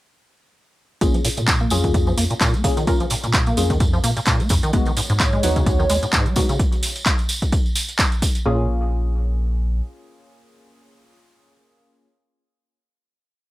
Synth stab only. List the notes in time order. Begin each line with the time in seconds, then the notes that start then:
1.01 A#3 C#4 F4 G#4
1.71 A#3 C#4 F4 G#4
2.64 A#3 C#4 F4 G#4
2.87 A#3 C#4 F4 A#4
3.57 A#3 C#4 F4 G#4
4.73 G#3 B3 D#4 F#4
5.43 G#3 B3 D#4 F#4
6.36 G#3 B3 D#4 F#4
8.46 A#3 C#4 F4 G#4